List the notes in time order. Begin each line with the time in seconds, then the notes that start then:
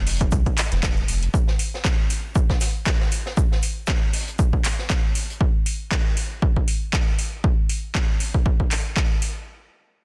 Already playing: F1
0.06 open hi-hat
0.20 kick, closed hi-hat
0.31 C2, kick, closed hi-hat, shaker
0.46 kick, closed hi-hat
0.58 clap, open hi-hat, shaker
0.72 F1, snare, closed hi-hat
0.83 kick, snare, clap, closed hi-hat, shaker
0.97 closed hi-hat
1.08 F1, open hi-hat, shaker
1.23 closed hi-hat
1.34 kick, shaker
1.48 snare
1.59 open hi-hat, shaker
1.74 snare
1.84 kick, snare, clap, shaker
2.10 open hi-hat, shaker
2.35 kick, shaker
2.49 kick, snare
2.61 snare, open hi-hat, shaker
2.86 kick, snare, clap, shaker
3.01 snare
3.12 open hi-hat, shaker
3.26 snare
3.37 kick, shaker
3.52 snare
3.63 open hi-hat, shaker
3.87 kick, snare, clap, shaker
4.13 open hi-hat
4.28 closed hi-hat
4.39 kick, shaker
4.53 kick
4.64 clap, open hi-hat, shaker
4.79 snare
4.90 kick, snare, clap, shaker
5.15 open hi-hat, shaker
5.30 closed hi-hat
5.41 kick
5.66 open hi-hat
5.91 kick, clap
6.17 open hi-hat
6.42 kick
6.56 kick
6.68 open hi-hat
6.93 kick, clap
7.19 open hi-hat
7.44 kick
7.69 open hi-hat
7.95 kick, clap
8.20 open hi-hat
8.34 kick
8.46 kick
8.60 kick
8.71 clap, open hi-hat
8.97 kick, clap
9.22 open hi-hat